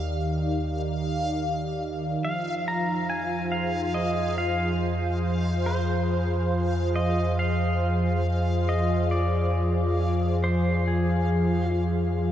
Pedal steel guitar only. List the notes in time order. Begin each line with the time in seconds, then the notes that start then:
2.25 F5
2.68 A#5
3.10 G#5
3.52 F5
3.94 D#5
4.38 F5
5.66 C5
6.96 D#5
7.39 F5
8.69 D#5
9.11 D5
10.44 C5
10.88 G#4